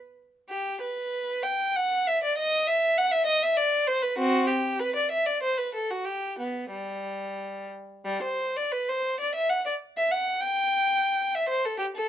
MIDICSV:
0, 0, Header, 1, 2, 480
1, 0, Start_track
1, 0, Key_signature, 1, "minor"
1, 0, Tempo, 627615
1, 378, Time_signature, 3, 2, 24, 8
1, 1810, Tempo, 610998
1, 3241, Key_signature, 1, "major"
1, 4210, Tempo, 658617
1, 6610, Tempo, 621118
1, 9215, End_track
2, 0, Start_track
2, 0, Title_t, "Violin"
2, 0, Program_c, 0, 40
2, 379, Note_on_c, 0, 67, 64
2, 603, Note_off_c, 0, 67, 0
2, 623, Note_on_c, 0, 71, 66
2, 1091, Note_off_c, 0, 71, 0
2, 1095, Note_on_c, 0, 79, 65
2, 1335, Note_off_c, 0, 79, 0
2, 1347, Note_on_c, 0, 78, 71
2, 1579, Note_off_c, 0, 78, 0
2, 1587, Note_on_c, 0, 76, 67
2, 1699, Note_off_c, 0, 76, 0
2, 1709, Note_on_c, 0, 74, 64
2, 1816, Note_off_c, 0, 74, 0
2, 1818, Note_on_c, 0, 75, 77
2, 2048, Note_off_c, 0, 75, 0
2, 2051, Note_on_c, 0, 76, 74
2, 2288, Note_off_c, 0, 76, 0
2, 2290, Note_on_c, 0, 78, 80
2, 2401, Note_on_c, 0, 76, 75
2, 2407, Note_off_c, 0, 78, 0
2, 2514, Note_on_c, 0, 75, 72
2, 2522, Note_off_c, 0, 76, 0
2, 2635, Note_off_c, 0, 75, 0
2, 2648, Note_on_c, 0, 76, 76
2, 2756, Note_on_c, 0, 74, 78
2, 2764, Note_off_c, 0, 76, 0
2, 2996, Note_on_c, 0, 72, 77
2, 2997, Note_off_c, 0, 74, 0
2, 3116, Note_on_c, 0, 71, 69
2, 3118, Note_off_c, 0, 72, 0
2, 3231, Note_on_c, 0, 60, 69
2, 3237, Note_on_c, 0, 66, 82
2, 3239, Note_off_c, 0, 71, 0
2, 3460, Note_off_c, 0, 60, 0
2, 3463, Note_on_c, 0, 67, 68
2, 3475, Note_off_c, 0, 66, 0
2, 3713, Note_off_c, 0, 67, 0
2, 3719, Note_on_c, 0, 71, 72
2, 3841, Note_off_c, 0, 71, 0
2, 3844, Note_on_c, 0, 74, 68
2, 3962, Note_off_c, 0, 74, 0
2, 3968, Note_on_c, 0, 76, 69
2, 4085, Note_on_c, 0, 74, 68
2, 4086, Note_off_c, 0, 76, 0
2, 4208, Note_off_c, 0, 74, 0
2, 4215, Note_on_c, 0, 72, 67
2, 4324, Note_on_c, 0, 71, 63
2, 4325, Note_off_c, 0, 72, 0
2, 4439, Note_off_c, 0, 71, 0
2, 4448, Note_on_c, 0, 69, 61
2, 4557, Note_off_c, 0, 69, 0
2, 4563, Note_on_c, 0, 66, 53
2, 4665, Note_on_c, 0, 67, 56
2, 4676, Note_off_c, 0, 66, 0
2, 4907, Note_off_c, 0, 67, 0
2, 4915, Note_on_c, 0, 59, 49
2, 5149, Note_off_c, 0, 59, 0
2, 5150, Note_on_c, 0, 55, 51
2, 5860, Note_off_c, 0, 55, 0
2, 6128, Note_on_c, 0, 55, 67
2, 6250, Note_off_c, 0, 55, 0
2, 6255, Note_on_c, 0, 72, 61
2, 6488, Note_off_c, 0, 72, 0
2, 6502, Note_on_c, 0, 74, 63
2, 6613, Note_off_c, 0, 74, 0
2, 6615, Note_on_c, 0, 71, 64
2, 6733, Note_off_c, 0, 71, 0
2, 6745, Note_on_c, 0, 72, 66
2, 6977, Note_off_c, 0, 72, 0
2, 6987, Note_on_c, 0, 74, 67
2, 7095, Note_off_c, 0, 74, 0
2, 7101, Note_on_c, 0, 76, 70
2, 7212, Note_off_c, 0, 76, 0
2, 7216, Note_on_c, 0, 78, 64
2, 7332, Note_off_c, 0, 78, 0
2, 7339, Note_on_c, 0, 74, 65
2, 7401, Note_off_c, 0, 74, 0
2, 7581, Note_on_c, 0, 76, 73
2, 7693, Note_off_c, 0, 76, 0
2, 7693, Note_on_c, 0, 78, 67
2, 7921, Note_on_c, 0, 79, 77
2, 7930, Note_off_c, 0, 78, 0
2, 8644, Note_off_c, 0, 79, 0
2, 8649, Note_on_c, 0, 76, 68
2, 8754, Note_on_c, 0, 72, 67
2, 8769, Note_off_c, 0, 76, 0
2, 8879, Note_off_c, 0, 72, 0
2, 8882, Note_on_c, 0, 69, 63
2, 8982, Note_on_c, 0, 67, 76
2, 9005, Note_off_c, 0, 69, 0
2, 9035, Note_off_c, 0, 67, 0
2, 9117, Note_on_c, 0, 69, 67
2, 9215, Note_off_c, 0, 69, 0
2, 9215, End_track
0, 0, End_of_file